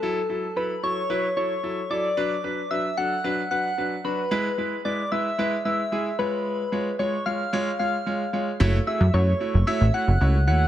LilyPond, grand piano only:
\new Staff \with { instrumentName = "Grand piano" } { \time 4/4 \key fis \minor \tempo 4 = 112 <fis e' a'>8 <fis e' a'>8 <fis e' a'>8 <fis e' a'>8 <fis e' b'>8 <fis e' a'>8 <fis e' a'>8 <fis e' a'>8 | <fis d' b'>8 <fis d' b'>8 <fis d' b'>8 <fis d' a'>8 <fis d' b'>8 <fis d' b'>8 <fis d' b'>8 <fis d' fis'>8 | <gis e' b'>8 <gis e' b'>8 <gis e' b'>8 <gis e' b'>8 <gis e' b'>8 <gis e' b'>8 <gis e' gis'>8 <gis eis' cis''>8~ | <gis eis' cis''>8 <gis eis' cis''>8 <gis eis' cis''>8 <gis eis' cis''>8 <gis eis' cis''>8 <gis eis' cis''>8 <gis eis' cis''>8 <gis eis' cis''>8 |
<a e' fis' cis''>8 <a e' fis' gis'>8 <a e' fis' cis''>8 <a e' fis' cis''>8 <a e' fis' cis''>8 <a e' fis' cis''>8 <a e' fis' cis''>8 <a e' fis' cis''>8 | }